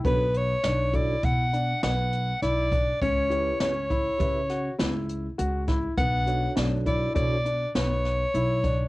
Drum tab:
HH |xxxxxxxxxx|xxxxxxxxxx|xxxxxxxxxx|
SD |--o---o-o-|--o--oo--o|--o---oo--|
BD |o--oo----o|o--oo----o|o--oo----o|